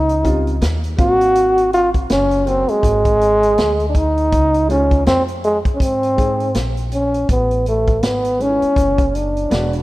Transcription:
Already playing: upright bass C#2, trombone D#4
0.09 closed hi-hat
0.23 upright piano G3 C4 C#4 F4, kick, closed hi-hat
0.47 closed hi-hat
0.61 upright bass D#2, snare, closed hi-hat
0.84 closed hi-hat
0.97 upright bass G#1, upright piano F#3 A#3 C4 F5, trombone F#4, kick, closed hi-hat
1.21 closed hi-hat
1.35 closed hi-hat
1.58 closed hi-hat
1.73 trombone F4, closed hi-hat
1.94 kick, closed hi-hat
2.10 upright bass F#1, trombone C#4, snare, closed hi-hat
2.31 closed hi-hat
2.45 upright piano F#3 A#3 C4 F#4, trombone C4, closed hi-hat
2.68 trombone G#3, muted upright bass stroke, closed hi-hat
2.83 upright bass G#1, kick, closed hi-hat
3.05 kick, closed hi-hat
3.21 closed hi-hat
3.43 closed hi-hat
3.58 upright bass D2, snare, closed hi-hat
3.80 closed hi-hat
3.90 trombone D4
3.95 trombone D#4, kick, closed hi-hat
4.17 closed hi-hat
4.32 upright bass C#2, kick, closed hi-hat
4.54 closed hi-hat
4.68 upright piano G#3 D#4 F4 C5, trombone C#4, closed hi-hat
4.91 kick, closed hi-hat
5.06 upright bass F2, trombone C4, snare, closed hi-hat
5.28 closed hi-hat
5.44 trombone G#3, closed hi-hat
5.65 muted upright bass stroke, kick, closed hi-hat
5.75 trombone C#4
5.80 upright bass G#2, trombone C4, kick, closed hi-hat
6.03 closed hi-hat
6.16 upright piano G#3 C4 D#4 G#4, kick, closed hi-hat
6.40 closed hi-hat
6.54 upright bass A#1, snare, closed hi-hat
6.77 closed hi-hat
6.92 trombone C#4, closed hi-hat
7.14 closed hi-hat
7.29 upright bass A1, trombone B3, kick, closed hi-hat
7.51 closed hi-hat
7.66 trombone A3, closed hi-hat
7.88 kick, closed hi-hat
8.03 upright bass G#1, trombone B3, snare, closed hi-hat
8.25 closed hi-hat
8.39 upright piano G#3 B3 C#4 D#4, trombone C#4, closed hi-hat
8.48 upright piano E4
8.62 muted upright bass stroke, closed hi-hat
8.76 upright bass F#1, kick, closed hi-hat
8.98 kick, closed hi-hat
9.09 trombone C#4
9.15 trombone D4, closed hi-hat
9.37 closed hi-hat
9.50 upright bass E1, upright piano G#3 B3 D4 F#4, snare, closed hi-hat
9.73 closed hi-hat

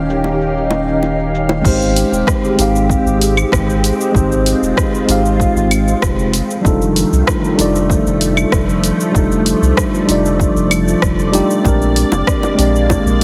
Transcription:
Already playing: sub bass D#1, string machine D#3 C#4 D#4 G4, tine electric piano G3 C#4 D#4 F4 A#4, synth texture F5
0.10 cabasa
0.24 high bongo, cabasa
0.41 cabasa
0.57 cabasa
0.71 high bongo, cabasa
0.88 cabasa
1.03 high bongo, cabasa
1.19 cabasa
1.35 cabasa
1.49 high bongo, cabasa
1.61 sub bass G#1, tine electric piano G#3 C4 D#4, string machine G#3 C4 G4, kick, crash
1.66 tine electric piano G4 C5, cabasa
1.82 cabasa
1.96 open hi-hat, cabasa
2.12 sub bass D#1, cabasa
2.27 kick, cross-stick, cabasa
2.45 cabasa
2.55 sub bass G#1, tine electric piano G#3 C4 D#4, open hi-hat
2.60 tine electric piano G4 F5, cabasa
2.76 cabasa
2.90 kick, cabasa
3.05 sub bass G#1, cabasa
3.21 open hi-hat, cabasa
3.37 cabasa, claves
3.52 sub bass G#1, kick, cross-stick, cabasa
3.70 cabasa
3.84 open hi-hat, cabasa
4.01 cabasa
4.12 sub bass G#1, tine electric piano G#3 C4 D#4, string machine F4, kick
4.16 tine electric piano G4 C5, cabasa
4.32 cabasa
4.46 open hi-hat, cabasa
4.62 sub bass D#1, cabasa
4.77 kick, cross-stick, cabasa
4.95 cabasa
5.05 sub bass G#1, tine electric piano G#3 C4 D#4, open hi-hat
5.10 tine electric piano G4 F5, cabasa
5.26 cabasa
5.40 kick, cabasa
5.55 sub bass G#1, cabasa
5.71 open hi-hat, cabasa, claves
5.88 cabasa
6.02 sub bass F1, kick, cross-stick, cabasa
6.19 cabasa
6.33 string machine D#3 F3 A3, open hi-hat, cabasa
6.51 cabasa
6.61 sub bass F1, tine electric piano G3 D4 D#4, kick
6.66 tine electric piano F4 A4, cabasa
6.82 cabasa
6.96 open hi-hat, cabasa
7.12 sub bass C2, cabasa
7.27 kick, cross-stick, cabasa
7.44 cabasa
7.55 sub bass F1, tine electric piano G3 D4 D#4, open hi-hat
7.60 tine electric piano F4 D5, cabasa
7.75 cabasa
7.90 kick, cabasa
8.06 sub bass F1, cabasa
8.21 open hi-hat, cabasa
8.37 cabasa, claves
8.52 sub bass F1, kick, cross-stick, cabasa
8.69 cabasa
8.83 string machine D5, open hi-hat, cabasa
9.00 cabasa
9.12 sub bass F1, tine electric piano G3 D4 D#4, kick, cabasa
9.16 tine electric piano F4 A4
9.32 cabasa
9.46 open hi-hat, cabasa
9.62 sub bass C2, cabasa
9.77 kick, cross-stick, cabasa
9.95 cabasa
10.05 sub bass F1, tine electric piano G3 D4 D#4, open hi-hat
10.10 tine electric piano F4 D5, cabasa
10.26 cabasa
10.40 kick, cabasa
10.55 sub bass F1, cabasa
10.71 open hi-hat, cabasa, claves
10.88 cabasa
11.02 sub bass F1, kick, cross-stick, cabasa
11.19 cabasa
11.32 tine electric piano G3 D4 D#4 F4 G4, open hi-hat, cabasa
11.51 cabasa
11.62 sub bass A#1, tine electric piano G#3 C4 D4, string machine G#3 A#3, kick, high bongo
11.66 tine electric piano G4 A#4, cabasa
11.82 cabasa
11.96 open hi-hat, cabasa
12.12 sub bass F1, high bongo, cabasa
12.27 kick, cross-stick, cabasa
12.43 high bongo, cabasa
12.55 sub bass A#1, tine electric piano G#3 C4 D4, open hi-hat
12.60 tine electric piano G4 D5, cabasa
12.76 cabasa
12.90 kick, high bongo, cabasa
13.05 sub bass A#1, cabasa

